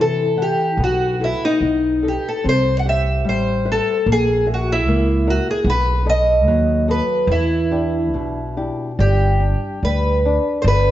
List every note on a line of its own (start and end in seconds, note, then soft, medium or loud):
0.00 0.49 C3 medium
0.00 0.76 E3 medium
0.00 0.21 E4 soft
0.00 0.21 F#4 soft
0.00 0.22 A4 soft
0.00 0.41 A4 medium
0.37 0.70 E4 soft
0.37 0.71 A4 soft
0.37 0.70 F#5 soft
0.42 0.82 G4 medium
0.77 1.32 B1 medium
0.77 1.60 B3 medium
0.84 1.24 F#4 medium
1.20 1.54 E4 soft
1.20 1.54 A4 soft
1.20 1.55 B4 soft
1.24 1.44 E4 medium
1.45 2.08 D#4 medium
1.61 2.15 B1 medium
1.61 2.04 B3 medium
2.03 2.36 A4 soft
2.03 2.37 B4 soft
2.03 2.37 D#5 soft
2.08 2.28 G4 medium
2.28 2.48 A4 medium
2.44 3.26 C2 medium
2.44 3.23 C4 medium
2.49 2.79 C5 medium
2.79 2.86 F#5 medium
2.85 3.50 G4 soft
2.85 3.50 C5 soft
2.85 3.51 E5 soft
2.85 3.29 E5 medium
3.25 3.78 A1 medium
3.25 4.04 G3 medium
3.29 3.69 C5 medium
3.65 3.98 B4 soft
3.65 3.98 C5 soft
3.65 3.98 E5 soft
3.72 4.11 A4 medium
4.06 4.86 A#1 medium
4.06 4.84 A#3 medium
4.12 4.47 G#4 medium
4.46 5.10 F#4 soft
4.46 5.10 A#4 soft
4.46 5.11 E5 soft
4.54 4.71 F#4 medium
4.72 5.31 E4 medium
4.86 5.38 C#2 medium
4.86 5.64 A#3 medium
5.27 5.58 F#4 soft
5.27 5.49 F#4 medium
5.27 5.59 A#4 soft
5.27 5.59 E5 soft
5.51 5.69 G#4 medium
5.64 6.46 B1 loud
5.64 6.06 B3 medium
5.70 6.09 B4 medium
6.06 6.71 A4 soft
6.06 6.71 B4 soft
6.06 6.72 D#5 soft
6.06 6.85 D#5 medium
6.46 6.99 D#2 medium
6.46 7.27 F#3 medium
6.88 7.21 A4 soft
6.88 7.21 B4 soft
6.88 7.32 B4 medium
6.88 7.21 D#5 soft
7.27 8.13 E2 loud
7.27 8.12 E3 medium
7.32 8.54 E4 medium
7.71 8.40 D4 soft
7.71 8.40 E4 soft
7.71 8.40 G4 soft
8.13 8.69 B1 medium
8.13 8.97 B2 medium
8.57 8.91 D4 soft
8.57 8.90 E4 soft
8.57 8.91 G4 soft
8.99 9.53 G1 medium
8.99 9.82 G3 medium
8.99 9.86 G4 medium
9.40 9.81 D4 soft
9.83 10.37 D2 medium
9.83 10.24 G3 soft
9.83 10.56 B4 medium
10.26 10.65 D4 soft
10.62 10.91 G1 loud
10.62 10.67 C5 medium
10.68 10.91 D3 medium
10.68 10.91 B4 medium